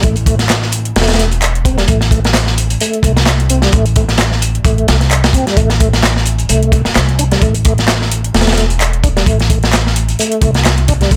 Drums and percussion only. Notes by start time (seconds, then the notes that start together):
0.03 kick, closed hi-hat
0.16 closed hi-hat
0.26 kick, closed hi-hat
0.39 snare, closed hi-hat
0.49 snare, clap, closed hi-hat
0.62 snare
0.72 closed hi-hat
0.85 closed hi-hat
0.96 snare, closed hi-hat
1.02 snare, closed hi-hat
1.07 snare, closed hi-hat
1.09 closed hi-hat
1.13 snare, closed hi-hat
1.19 snare, closed hi-hat
1.31 closed hi-hat
1.42 clap, closed hi-hat
1.55 closed hi-hat
1.65 kick, closed hi-hat
1.78 snare, closed hi-hat
1.88 kick, closed hi-hat
2.01 snare, closed hi-hat
2.11 kick, closed hi-hat
2.25 snare, closed hi-hat
2.34 snare, clap, closed hi-hat
2.46 snare
2.58 closed hi-hat
2.70 closed hi-hat
2.80 closed hi-hat
2.94 closed hi-hat
3.03 kick, closed hi-hat
3.17 snare, closed hi-hat
3.26 snare, clap, closed hi-hat
3.40 closed hi-hat
3.49 closed hi-hat
3.62 snare, closed hi-hat
3.72 kick, closed hi-hat
3.86 closed hi-hat
3.96 kick, closed hi-hat
4.09 snare, closed hi-hat
4.18 snare, clap, closed hi-hat
4.19 closed hi-hat
4.32 snare
4.42 closed hi-hat
4.55 closed hi-hat
4.65 kick, closed hi-hat
4.78 closed hi-hat
4.88 snare, closed hi-hat
5.01 snare, closed hi-hat
5.11 clap, closed hi-hat
5.24 snare, closed hi-hat
5.33 kick, closed hi-hat
5.47 snare, closed hi-hat
5.57 kick, closed hi-hat
5.70 snare, closed hi-hat
5.80 kick, closed hi-hat
5.93 snare, closed hi-hat
6.03 snare, clap, closed hi-hat
6.16 snare
6.26 closed hi-hat
6.38 closed hi-hat
6.49 closed hi-hat
6.63 closed hi-hat
6.72 kick, closed hi-hat
6.85 snare, closed hi-hat
6.95 snare, clap, closed hi-hat
7.09 closed hi-hat
7.19 closed hi-hat
7.31 snare, closed hi-hat
7.42 kick, closed hi-hat
7.54 closed hi-hat
7.65 kick, closed hi-hat
7.78 snare, closed hi-hat
7.88 snare, clap, closed hi-hat
8.02 snare
8.12 closed hi-hat
8.24 closed hi-hat
8.34 snare, closed hi-hat
8.41 snare, closed hi-hat
8.47 snare, closed hi-hat
8.53 snare, closed hi-hat
8.58 snare, closed hi-hat
8.70 closed hi-hat
8.81 clap, closed hi-hat
8.93 closed hi-hat
9.04 kick, closed hi-hat
9.17 snare, closed hi-hat
9.26 kick, closed hi-hat
9.40 snare, closed hi-hat
9.50 kick, closed hi-hat
9.63 snare, closed hi-hat
9.73 snare, clap, closed hi-hat
9.87 snare
9.96 closed hi-hat
10.09 closed hi-hat
10.19 closed hi-hat
10.32 closed hi-hat
10.42 kick, closed hi-hat
10.54 snare, closed hi-hat
10.65 snare, clap, closed hi-hat
10.78 closed hi-hat
10.88 kick, closed hi-hat
11.01 snare, closed hi-hat
11.11 kick, closed hi-hat